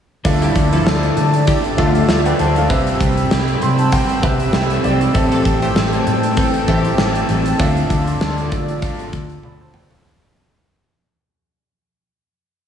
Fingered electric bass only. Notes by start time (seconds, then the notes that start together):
0.25 D2
0.55 D2
0.86 D2
1.17 D3
1.78 D2
2.09 D2
2.40 D2
2.70 C2
3.00 C2
3.32 C2
3.63 C3
4.23 C2
4.54 C2
4.85 C2
5.15 A1
5.45 A1
5.76 A1
6.07 A2
6.68 A1
6.99 A1
7.29 A1
7.60 D2
7.90 D2
8.22 D2
8.52 D3
9.13 D2
9.43 D2
9.74 D2